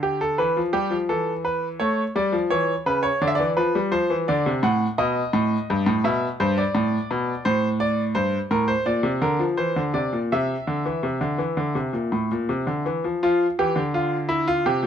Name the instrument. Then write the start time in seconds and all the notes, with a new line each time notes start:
grand piano
Already playing: D3
0.03 G4
0.21 A4
0.38 E3 B4
0.57 F3
0.73 G3 G4
0.90 F3
1.09 E3 A4
1.45 B4
1.80 A3 C#5
2.16 G3 D5
2.32 F3
2.50 E3 C#5
2.86 C#3 B4
3.03 C#5
3.21 D3 D5
3.27 E5
3.35 D5
3.40 E3
3.57 F3 B4
3.75 G3
3.92 F3 C5
4.10 E3
4.28 D3 D5
4.46 C3
4.63 A2 F#5
4.98 B2 D#5
5.33 A2
5.70 G2
5.86 A2
6.04 B2 E5
6.40 G2 C5
6.58 D5
6.75 A2
7.11 B2
7.45 A2 C5
7.80 D5
8.15 G2 C5
8.51 A2 A#4
8.68 C5
8.86 A#2 D5
9.03 C3
9.22 D3 A#4
9.39 F3
9.57 E3 C5
9.76 D3
9.94 C3 D5
10.13 A#2
10.32 C3 E5
10.67 D3
10.85 E3
11.03 C3
11.21 D3
11.38 E3
11.57 D3
11.75 C3
11.93 A#2
12.12 A2
12.31 A#2
12.49 C3
12.67 D3
12.86 E3
13.04 F3
13.23 F3 F4
13.59 E3 G4
13.76 D3
13.94 F4
14.29 E4
14.48 F4
14.66 C3 G4
14.83 A#2